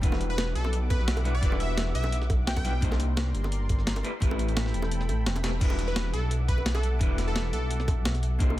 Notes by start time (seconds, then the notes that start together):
0.02 E1 G3 D4 E4 F#4 B4 E5 F#5 D6, kick, closed hi-hat
0.12 snare, high bongo
0.21 closed hi-hat
0.30 B4
0.38 snare, closed hi-hat, high bongo
0.55 B1 A4, closed hi-hat
0.64 snare, high bongo
0.73 closed hi-hat
0.90 B4, kick, closed hi-hat, high bongo
1.00 snare
1.08 snare, closed hi-hat
1.17 closed hi-hat, high bongo
1.24 G3 D4 E4 F#4 B4, closed hi-hat
1.35 D5
1.41 E1 G3 D4 E4 F#4 B4, kick, closed hi-hat
1.52 high bongo
1.60 E5, closed hi-hat
1.78 snare, closed hi-hat, high bongo
1.95 B1 E5, closed hi-hat
2.04 snare, high bongo
2.12 closed hi-hat
2.22 snare
2.30 kick, closed hi-hat, high bongo
2.47 G5, snare, closed hi-hat
2.56 G5, kick, snare, closed hi-hat, high bongo
2.64 G3 D4 E4 F#4 B4, closed hi-hat
2.81 C2 A#3 D4 D#4 G4 A#4 C5 D5 C6, kick, closed hi-hat
2.91 snare, high bongo
3.00 closed hi-hat
3.17 snare, closed hi-hat, high bongo
3.34 G1, closed hi-hat
3.44 snare, high bongo
3.52 closed hi-hat
3.69 kick, closed hi-hat, high bongo
3.79 snare
3.87 snare, closed hi-hat
3.96 closed hi-hat, high bongo
4.03 A3 C4 E4 G4 A4 B4 G5 B5, closed hi-hat
4.20 A1 A3 C4 E4 G4 B4, kick, closed hi-hat
4.31 high bongo
4.39 closed hi-hat
4.48 closed hi-hat
4.57 snare, closed hi-hat, high bongo
4.66 snare
4.74 E1, closed hi-hat
4.82 snare, high bongo
4.91 closed hi-hat
5.01 snare
5.09 A1, closed hi-hat, high bongo
5.26 E1, snare, closed hi-hat
5.36 snare, closed hi-hat, high bongo
5.43 A3 C4 E4 G4 B4, snare, closed hi-hat
5.60 E1 G3 D4 E4 F#4 B4 E5 F#5 D6, kick, closed hi-hat, crash
5.70 high bongo
5.79 closed hi-hat
5.88 B4
5.96 snare, closed hi-hat
6.13 B1 A4, closed hi-hat
6.31 closed hi-hat
6.48 B4, kick, closed hi-hat
6.58 high bongo
6.66 snare, closed hi-hat
6.75 A4, closed hi-hat, high bongo
6.83 closed hi-hat
6.99 E1 G3 D4 E4 F#4 B4, kick, closed hi-hat
7.18 snare, closed hi-hat
7.28 A4
7.36 snare, closed hi-hat
7.53 B1 A4, closed hi-hat
7.71 closed hi-hat
7.80 snare
7.88 kick, closed hi-hat, high bongo
8.05 snare, closed hi-hat
8.15 snare, closed hi-hat
8.23 closed hi-hat
8.39 C2 A#3 D4 D#4 G4 A#4 C5 D5 C6, kick, closed hi-hat
8.50 high bongo